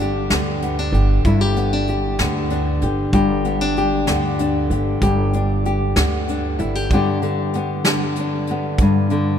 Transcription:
Already playing: G1 G2 D3 D4
0.02 G4
0.30 D2 D3 B3, snare, closed hi-hat
0.62 B3, closed hi-hat
0.79 D4
0.92 G1 G4, closed hi-hat
1.25 G1 G2 E4, kick, closed hi-hat
1.41 G4
1.56 B3, closed hi-hat
1.73 D4
1.87 G4, closed hi-hat
2.19 D2 D3 B3, snare, closed hi-hat
2.50 D4, closed hi-hat
2.81 G1 G4, closed hi-hat
3.13 G1 G2 G4, kick, closed hi-hat
3.44 B3, closed hi-hat
3.61 D4
3.76 G4, closed hi-hat
4.07 D2 D3 B3, snare, closed hi-hat
4.39 D4, closed hi-hat
4.70 G1 G4, closed hi-hat
5.01 G1 G2 G4, kick, closed hi-hat
5.33 D4, closed hi-hat
5.65 G4, closed hi-hat
5.96 D2 D3 B3, snare, closed hi-hat
6.28 D4, closed hi-hat
6.59 G1 E4, closed hi-hat
6.75 G4
6.91 G2 D3 B3 D4 G4, kick, closed hi-hat
7.22 D3, closed hi-hat
7.53 B3, closed hi-hat
7.85 D3, snare, closed hi-hat
8.16 closed hi-hat
8.20 D4
8.47 B3, closed hi-hat
8.78 G2, kick, closed hi-hat
9.10 D3, closed hi-hat

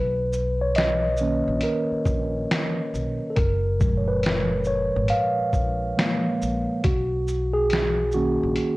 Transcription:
Already playing: B1 B4
0.33 shaker
0.61 C#5
0.75 D#5, finger snap, snare, closed hi-hat
1.17 D#3 A#3, shaker
1.21 C#4
1.48 A#1
1.61 A#4, closed hi-hat
1.92 muted upright bass stroke
2.06 A#1, kick, shaker
2.51 finger snap, snare, closed hi-hat
2.94 B1, shaker
3.30 A4
3.36 F#1 A#4, kick, closed hi-hat
3.79 A#2 F3 G#3, kick, shaker
3.97 C#5
4.08 B4
4.23 finger snap, snare, closed hi-hat
4.64 C#5, shaker
4.96 G#1
5.08 F5, closed hi-hat
5.38 muted upright bass stroke
5.53 A#1, kick, shaker
5.97 F3 G#3 A#3, finger snap, snare, closed hi-hat
6.42 A#1, shaker
6.84 B1 F#4, kick, closed hi-hat
7.28 shaker
7.54 G#4
7.70 finger snap, snare, closed hi-hat
8.12 D#3 A#3 C#4 F#4, shaker
8.43 A#1
8.56 closed hi-hat

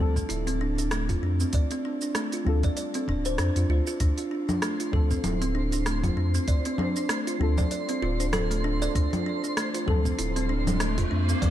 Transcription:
Already playing: G3
0.00 D2 F3 C4 A4
0.16 C4, kick, shaker
0.29 D1 E4, open hi-hat, shaker
0.47 C4, open hi-hat, shaker
0.61 D4
0.78 D4, open hi-hat, shaker
0.91 A3, cross-stick, open hi-hat, shaker
1.09 F4, kick, open hi-hat, shaker
1.22 F2 D4
1.40 C4, shaker
1.53 D2 D5, kick, open hi-hat, shaker
1.71 C4, open hi-hat, shaker
1.85 D4
2.01 D4, shaker
2.15 A3, cross-stick, open hi-hat, shaker
2.32 F4, open hi-hat, shaker
2.44 D2 G3 C4 D4 F4
2.48 A4
2.63 D5, kick, open hi-hat, shaker
2.77 D5, open hi-hat, shaker
2.94 C4, open hi-hat, shaker
3.08 D1 D4, kick
3.25 C5, open hi-hat, shaker
3.38 F2 D4, cross-stick, open hi-hat, shaker
3.56 F2 F4, open hi-hat, shaker
3.69 D2 F4
3.87 F4, shaker
4.00 D2 D4 C5, kick, open hi-hat, shaker
4.18 F4, open hi-hat, shaker
4.31 D4
4.49 D4, low conga, shaker
4.62 A3, cross-stick, open hi-hat, shaker
4.80 F4, open hi-hat, shaker
4.91 D2 F3 G3 C4 A4, kick
5.11 C4, kick, shaker
5.24 D1 E4, open hi-hat, low conga, shaker
5.42 C4, open hi-hat, shaker
5.55 D4
5.72 D4, open hi-hat, shaker
5.86 A3, cross-stick, open hi-hat, shaker
6.04 F4, kick, open hi-hat, low conga, shaker
6.17 F2 D4
6.34 C4, shaker
6.48 D2 D5, kick, open hi-hat, shaker
6.65 C4, open hi-hat, shaker
6.78 D4, low conga
6.96 D4, shaker
7.09 A3, cross-stick, open hi-hat, shaker
7.27 F4, open hi-hat, shaker
7.39 D2 G3 C4 D4 F4 A4
7.58 D5, kick, low conga, shaker
7.71 D5, open hi-hat, shaker
7.89 C4, open hi-hat, shaker
8.02 D1 F4
8.20 D4, open hi-hat, shaker
8.33 A4, cross-stick, open hi-hat, low conga, shaker
8.51 A3, open hi-hat, shaker
8.64 D4
8.82 D5, shaker
8.95 D2 D4, kick, open hi-hat, riser, shaker
9.13 F4, open hi-hat, low conga, shaker
9.26 D4
9.44 D4, shaker
9.57 A3, cross-stick, open hi-hat, shaker
9.74 F4, open hi-hat, shaker
9.86 D2 F3 G3 C4 A4, kick, low conga
10.05 C4, kick, shaker
10.19 D1 E4, open hi-hat, shaker
10.36 C4, open hi-hat, shaker
10.49 D4
10.67 D4, open hi-hat, low conga, shaker
10.80 A3, cross-stick, open hi-hat, shaker
10.98 F4, kick, open hi-hat, shaker
11.11 F2 D4
11.29 C4, shaker
11.42 D2 D5, kick, open hi-hat, low conga, shaker

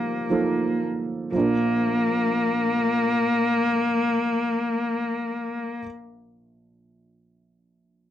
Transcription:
Already playing: G1 G2 F3 A#3 D#4 F4 G4
0.30 F3 A#3 D#4 A4
1.32 A#1 F3 A#3
1.37 D4 A#4

